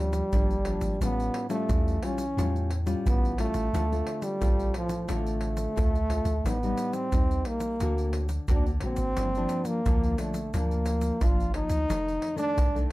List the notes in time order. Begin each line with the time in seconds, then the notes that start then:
Already playing: D2 G2 F3 G3 A#3 D4
0.13 pandeiro, shaker
0.32 G1 D3 F3 A#3 D4, pandeiro, shaker, surdo
0.51 pandeiro, shaker
0.65 F3 A#3 D4, pandeiro
0.81 G#1, pandeiro, shaker
1.00 A1 A2 G3 B3 C#4 F4, pandeiro, shaker, surdo
1.20 pandeiro, shaker
1.34 pandeiro
1.49 G3 A3 C#4 F4, pandeiro, shaker
1.69 E2 E3, pandeiro, shaker, surdo
1.88 pandeiro, shaker
2.03 G3 C#4 F4, pandeiro
2.18 pandeiro, shaker
2.37 E2 A2 G3 C#4 F4, pandeiro, shaker, surdo
2.56 pandeiro, shaker
2.70 pandeiro
2.86 G3 C#4 F4, pandeiro, shaker
3.06 A1 E3 B3, pandeiro, shaker, surdo
3.25 pandeiro, shaker
3.38 G3 A3 C#4 F4, pandeiro
3.54 A1, pandeiro, shaker
3.73 D2 D3 A3 C4 F4, pandeiro, shaker, surdo
3.92 A3 C4 F4, pandeiro, shaker
4.07 pandeiro
4.22 G3, pandeiro, shaker
4.41 A1 A2 A3 C4 F4, pandeiro, shaker, surdo
4.59 pandeiro, shaker
4.74 F3, pandeiro
4.89 pandeiro, shaker
5.08 A1 D3 A3 C4 F4, pandeiro, shaker, surdo
5.26 pandeiro, shaker
5.41 pandeiro
5.57 pandeiro, shaker
5.76 D2 A2 A3 C4 F4, pandeiro, shaker, surdo
5.95 pandeiro, shaker
6.09 A3 C4 F4, pandeiro
6.25 D2, pandeiro, shaker
6.44 A1 A2 G3 B3 C4 D#4, pandeiro, shaker, surdo
6.63 G3 D#4, pandeiro, shaker
6.77 pandeiro, shaker
6.93 C4, pandeiro, shaker
7.12 D#2 G3 C4 D#4, pandeiro, shaker, surdo
7.31 pandeiro, shaker
7.45 A#3, pandeiro
7.60 pandeiro, shaker
7.80 D2 D3 A#3 C4 F#4, pandeiro, shaker, surdo
7.98 pandeiro, shaker
8.13 pandeiro
8.29 pandeiro, shaker
8.48 D2 D3 A#3 C4 D4 F#4, pandeiro, shaker, surdo
8.66 pandeiro, shaker
8.80 A#1 A#3 C4 F#4, pandeiro
8.96 G#1, pandeiro, shaker
9.17 G1 G2 F3 A#3 D4, pandeiro, shaker, surdo
9.35 F3 A#3 D4, pandeiro, shaker
9.49 pandeiro, shaker
9.65 A#3, pandeiro, shaker
9.85 D2 D3 F3 A#3 D4, pandeiro, shaker, surdo
10.03 pandeiro, shaker
10.18 F3 A3 A#3 D4, pandeiro, shaker
10.34 pandeiro, shaker
10.54 D2 G2 F3 A#3 D4, pandeiro, shaker, surdo
10.71 pandeiro, shaker
10.86 pandeiro, shaker
11.01 pandeiro, shaker
11.21 G1 F3 A#3 D4 F4, pandeiro, shaker, surdo
11.40 pandeiro, shaker
11.54 F3 A#3 D#4, pandeiro
11.69 D2, pandeiro, shaker
11.88 F1 F2 D#3 A3, pandeiro, shaker, surdo
12.08 pandeiro, shaker
12.22 pandeiro
12.36 D#3 A3 D4, pandeiro, shaker
12.57 C2 C3, pandeiro, shaker, surdo
12.75 D#3 A3 D4, pandeiro, shaker